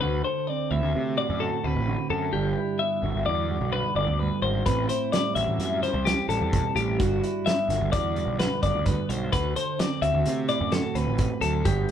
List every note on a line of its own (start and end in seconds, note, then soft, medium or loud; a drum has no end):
0.01 0.21 D2 medium
0.01 1.86 D3 medium
0.01 0.26 F#4 medium
0.01 0.24 B4 medium
0.24 0.71 A4 medium
0.24 0.47 C5 medium
0.47 0.94 C4 medium
0.47 0.71 D5 medium
0.71 0.81 D2 medium
0.71 2.31 A3 medium
0.71 0.84 E4 medium
0.71 1.17 E5 medium
0.82 0.92 D2 medium
0.82 1.17 F#4 soft
0.95 1.24 C3 medium
0.95 1.64 C4 soft
1.17 1.87 A2 medium
1.17 1.41 F#4 medium
1.17 1.41 D5 medium
1.30 1.49 F#2 loud
1.40 1.87 F#4 medium
1.40 1.64 A4 medium
1.64 1.74 D2 medium
1.64 2.31 C4 medium
1.64 2.10 B4 medium
1.76 1.95 A1 medium
1.88 3.03 D3 medium
1.88 2.09 F#4 medium
2.10 2.30 F#2 medium
2.10 2.31 F#4 medium
2.10 2.33 A4 medium
2.33 2.53 G1 medium
2.33 3.49 G2 medium
2.33 3.72 D4 medium
2.33 2.80 G4 medium
2.58 3.04 E4 medium
2.79 3.27 B3 medium
2.79 3.25 E5 medium
3.03 3.13 G1 medium
3.03 4.67 D3 medium
3.03 3.49 F#4 medium
3.15 3.25 G1 medium
3.26 3.56 E2 medium
3.26 3.97 B3 soft
3.26 3.72 D5 medium
3.50 4.19 G2 medium
3.50 4.43 F#4 medium
3.61 3.81 B1 medium
3.73 4.20 D4 medium
3.73 3.96 B4 medium
3.95 4.06 G1 medium
3.95 4.64 B3 medium
3.95 4.20 D5 medium
4.07 4.27 D2 medium
4.20 4.64 G2 medium
4.20 4.64 D4 medium
4.20 4.42 B4 medium
4.42 4.62 G#1 medium
4.42 4.64 F#4 medium
4.42 4.65 C5 medium
4.66 4.86 A1 medium
4.66 5.83 A2 medium
4.66 6.05 C4 medium
4.66 4.89 B4 medium
4.66 kick medium
4.66 closed hi-hat medium
4.89 5.36 E4 medium
4.89 5.12 C5 medium
4.89 closed hi-hat medium
5.12 6.29 G3 medium
5.12 5.35 D5 medium
5.12 snare loud
5.12 closed hi-hat medium
5.35 5.46 A1 medium
5.35 6.97 E3 medium
5.35 5.83 F#4 medium
5.35 5.82 E5 medium
5.35 closed hi-hat medium
5.48 5.58 A1 medium
5.59 5.89 F#2 medium
5.59 closed hi-hat medium
5.83 6.99 E2 soft
5.83 5.93 E4 medium
5.83 6.06 C5 medium
5.83 snare soft
5.83 closed hi-hat soft
5.93 6.14 C2 loud
5.93 6.98 G4 soft
6.05 6.96 C4 medium
6.05 6.29 G4 medium
6.05 snare medium
6.05 closed hi-hat medium
6.29 6.39 A1 medium
6.29 7.46 G3 medium
6.29 6.75 A4 medium
6.29 closed hi-hat medium
6.41 6.61 E2 medium
6.53 6.76 B2 medium
6.53 kick loud
6.53 closed hi-hat medium
6.76 6.96 A1 medium
6.76 6.99 A2 medium
6.76 6.99 G4 medium
6.76 closed hi-hat medium
6.99 7.20 G1 medium
6.99 8.15 G2 medium
6.99 8.39 D4 medium
6.99 7.46 F#4 medium
6.99 kick loud
6.99 closed hi-hat medium
7.24 7.70 E4 medium
7.24 closed hi-hat medium
7.46 7.93 B3 medium
7.46 7.92 E5 medium
7.46 snare loud
7.46 closed hi-hat medium
7.69 7.79 G1 medium
7.69 9.31 D3 medium
7.69 8.17 F#4 medium
7.69 snare soft
7.69 closed hi-hat medium
7.81 7.91 G1 medium
7.92 8.22 E2 medium
7.92 8.38 B3 medium
7.92 8.39 D5 medium
7.92 kick loud
7.92 closed hi-hat medium
8.16 8.84 G2 medium
8.16 9.09 F#4 medium
8.16 closed hi-hat medium
8.27 8.47 B1 medium
8.39 8.52 B3 medium
8.39 8.62 B4 medium
8.39 snare loud
8.39 closed hi-hat medium
8.52 8.85 D4 soft
8.63 8.73 G1 medium
8.63 9.30 B3 medium
8.63 8.86 D5 medium
8.63 kick medium
8.63 closed hi-hat medium
8.74 8.94 D2 medium
8.85 9.29 G2 medium
8.85 9.80 D4 medium
8.85 9.09 B4 medium
8.85 kick loud
8.85 closed hi-hat medium
9.09 9.29 B1 medium
9.09 9.32 F#4 medium
9.09 9.32 C5 medium
9.09 closed hi-hat medium
9.32 9.52 D2 medium
9.32 11.18 D3 medium
9.32 9.56 F#4 medium
9.32 9.56 B4 medium
9.32 kick medium
9.32 closed hi-hat medium
9.56 10.02 A4 medium
9.56 9.79 C5 medium
9.56 closed hi-hat medium
9.79 10.25 C4 medium
9.79 10.02 D5 medium
9.79 snare loud
9.79 closed hi-hat medium
10.02 10.12 D2 medium
10.02 11.63 A3 medium
10.02 10.48 F#4 medium
10.02 10.48 E5 medium
10.02 closed hi-hat medium
10.14 10.24 D2 medium
10.26 10.55 C3 medium
10.26 10.95 C4 medium
10.26 closed hi-hat medium
10.48 11.65 A2 medium
10.48 10.61 E4 medium
10.48 10.72 D5 medium
10.48 closed hi-hat medium
10.61 10.80 F#2 loud
10.61 10.72 F#4 soft
10.72 11.63 F#4 medium
10.72 10.95 A4 medium
10.72 snare loud
10.72 closed hi-hat medium
10.95 11.05 D2 medium
10.95 11.63 C4 medium
10.95 11.41 B4 medium
10.95 closed hi-hat medium
11.07 11.27 A1 medium
11.18 11.42 E3 medium
11.18 kick medium
11.18 closed hi-hat medium
11.41 11.62 D2 medium
11.41 11.66 F#3 medium
11.41 11.65 A4 medium
11.41 closed hi-hat medium
11.65 11.85 G1 medium
11.65 11.91 G2 medium
11.65 11.91 D3 medium
11.65 11.91 B3 medium
11.65 11.91 D4 medium
11.65 11.90 F#4 medium
11.65 11.91 G4 medium
11.65 kick loud
11.65 closed hi-hat medium